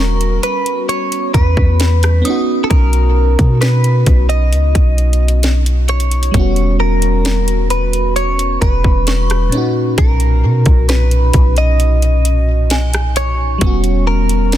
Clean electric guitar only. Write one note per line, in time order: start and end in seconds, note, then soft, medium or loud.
0.00 0.43 A#4 loud
0.43 0.86 B4 medium
0.89 1.34 C#5 loud
1.34 2.63 B4 loud
2.64 2.70 A4 medium
2.70 3.61 A#4 loud
3.61 4.26 B4 medium
4.29 5.62 D#5 loud
5.89 6.76 C#5 loud
6.80 7.70 A#4 loud
7.70 8.16 B4 medium
8.16 8.61 C#5 loud
8.61 9.98 B4 loud
9.98 10.89 A#4 medium
10.89 11.57 B4 medium
11.58 12.90 D#5 loud
13.17 14.07 C#5 loud
14.07 14.57 A#4 loud